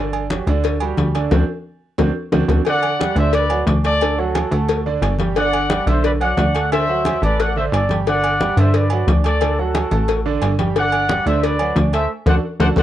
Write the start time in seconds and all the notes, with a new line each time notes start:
Already playing: G1 D3
0.00 D4 D5
0.13 high conga, low agogo
0.30 F#3 F#4 G4, cowbell, high conga
0.47 D2 D3 D4 D5, high conga, low agogo
0.64 cowbell, high conga, low agogo
0.80 G3 F#4 G4, high conga, low agogo
0.97 D2, cowbell, high conga
1.15 D3 D4 D5, cowbell, high conga, low agogo
1.31 D2 C4 D4 F#4, cowbell, high conga, high timbale
1.98 D2 C4 D4 F#4, cowbell, high conga, high timbale
2.32 D2 C4 D4 F#4, cowbell, high conga, high timbale
2.48 D2 C4 D4 F#4, cowbell, high conga, high timbale
2.65 D3 D4 D5 F#5, cowbell, high conga, low agogo
2.83 high conga, low agogo
2.99 G3 G4 G5, cowbell, high conga
3.16 D2 D3 D4 C5 D5 E5, high conga, low agogo
3.33 B4 D5, cowbell, high conga, low agogo
3.50 F#3 F#4 F#5, high conga, low agogo
3.67 D2 D4 D5 D6, cowbell, high conga
3.84 A3 A4 D5 A5, cowbell, high conga, low agogo
4.01 D3 D4 D5, cowbell, high conga, low agogo
4.18 F#3 F#4 A4 F#5, high conga
4.35 cowbell, high conga, low agogo
4.51 D2 A3 A4 A5, high conga, low agogo
4.68 cowbell, high conga, low agogo
4.86 D3 D4 D5, high conga
5.02 G1, cowbell, high conga, low timbale, low agogo
5.19 G3 G4 G5, cowbell, high conga
5.35 D3 D4 D5 F#5, cowbell, high conga, low agogo
5.53 high conga, low agogo
5.69 G3 G4 G5, cowbell, high conga
5.87 B1 D3 D4 C5 D5 E5, high conga, low agogo
6.04 B4 D5, cowbell, high conga, low agogo
6.21 F#3 F#4 D5 F#5, high conga, low agogo
6.37 D2 D4 D5 D6, cowbell, high conga, low timbale
6.54 A3 A4 A5, cowbell, high conga, low agogo
6.72 D3 D4 C5 D5 E5, cowbell, high conga, low agogo
6.88 F#3 F#4 F#5, high conga
7.05 cowbell, high conga, low agogo
7.22 A1 A3 A4 B4 D5 A5, high conga, low agogo
7.40 D5 F#5, cowbell, high conga, low agogo
7.56 D3 D4 C5 D5 E5, high conga
7.72 G1 A4 D5, cowbell, high conga, low agogo
7.89 G3 G4 G5, cowbell, high conga
8.07 D3 D4 D5 F#5, cowbell, high conga, low agogo
8.24 high conga, low agogo
8.41 G3 G4 G5, cowbell, high conga
8.57 G2 D3 D4 C5 D5 E5, low agogo
8.74 B4 D5, cowbell, high conga, low agogo
8.90 F#3 F#4 F#5, high conga, low agogo
9.07 D2 D4 D5 D6, cowbell, high conga
9.24 A3 A4 D5 A5, cowbell, high conga, low agogo
9.41 D3 D4 D5, cowbell, high conga, low agogo
9.59 F#3 F#4 A4 F#5, high conga
9.75 cowbell, high conga, low agogo
9.91 A1 A3 A4 A5, high conga, low agogo
10.08 cowbell, high conga, low agogo
10.26 D3 D4 D5, high conga
10.42 G1, cowbell, high conga, low agogo
10.59 G3 G4 G5, cowbell, high conga
10.76 D3 D4 D5 F#5, cowbell, high conga, low agogo
10.92 high conga, low agogo
11.09 G3 G4 G5, cowbell, high conga
11.26 D2 D3 D4 C5 D5 E5, high conga, low agogo
11.43 B4 D5, cowbell, high conga, low agogo
11.59 F#3 F#4 F#5, high conga, low agogo
11.76 D2 D4 D5 D6, cowbell, high conga
11.93 A3 A4 C5 E5 A5, cowbell, high conga, low agogo
12.26 D2 D4 F#4 A4 C5 D5 F#5, cowbell, high conga, high timbale
12.60 D2 D4 F#4 A4 C5 D5 F#5, cowbell, high conga, high timbale
12.76 D2 D4 F#4 A4 C5 D5 F#5, cowbell, high conga, high timbale